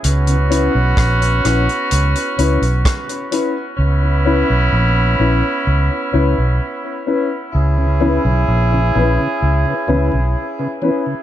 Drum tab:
HH |xxx-xxxxxxxxxxx-|----------------|----------------|
SD |----r-r-----r---|----------------|----------------|
BD |----o-------o---|----------------|----------------|